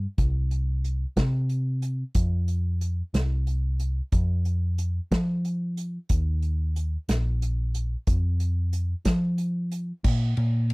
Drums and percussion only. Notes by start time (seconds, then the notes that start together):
0.18 kick, closed hi-hat
0.51 closed hi-hat
0.84 closed hi-hat
1.17 kick, snare, closed hi-hat
1.49 closed hi-hat
1.82 closed hi-hat
2.15 kick, closed hi-hat
2.48 closed hi-hat
2.81 closed hi-hat
3.14 snare, closed hi-hat
3.47 closed hi-hat
3.79 closed hi-hat
4.12 kick, closed hi-hat
4.45 closed hi-hat
4.78 closed hi-hat
5.12 kick, snare, closed hi-hat
5.45 closed hi-hat
5.77 closed hi-hat
6.09 kick, closed hi-hat
6.42 closed hi-hat
6.76 closed hi-hat
7.09 snare, closed hi-hat
7.42 closed hi-hat
7.74 closed hi-hat
8.07 kick, closed hi-hat
8.40 closed hi-hat
8.73 closed hi-hat
9.05 kick, snare, closed hi-hat
9.38 closed hi-hat
9.71 closed hi-hat
10.04 kick, crash
10.37 ride
10.70 ride